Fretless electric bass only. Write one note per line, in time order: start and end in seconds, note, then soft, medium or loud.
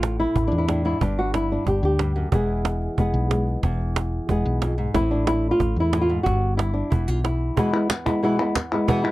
0.00 0.25 A1 medium
0.35 0.49 A1 medium
0.52 0.93 E2 medium
1.01 1.57 G1 medium
1.67 1.81 G1 medium
1.83 2.25 D2 medium
2.32 2.88 E1 medium
2.98 3.12 E1 medium
3.14 3.56 B1 medium
3.63 4.19 E1 medium
4.29 4.43 E1 medium
4.46 4.87 B1 medium
4.95 5.50 A1 medium
5.60 5.74 A1 medium
5.76 6.18 E2 medium
6.26 6.82 G1 medium
6.92 7.06 E1 medium
7.08 7.50 B1 medium